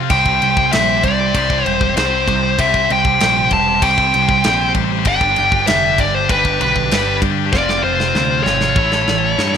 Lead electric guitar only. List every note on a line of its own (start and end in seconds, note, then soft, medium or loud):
0.10 0.72 G5 medium
0.73 1.01 E5 medium
1.04 1.67 D5 medium
1.67 1.93 C5 medium
1.98 2.61 C5 medium
2.60 2.91 E5 medium
2.92 3.49 G5 loud
3.53 3.84 A5 loud
3.82 4.71 G5 loud
5.08 5.67 G5 loud
5.67 5.99 E5 loud
6.00 6.15 D5 loud
6.15 6.30 C5 medium
6.30 6.60 B4 loud
6.61 7.19 B4 medium
7.53 7.83 D5 medium
7.84 8.43 C5 loud
8.44 9.57 C#5 medium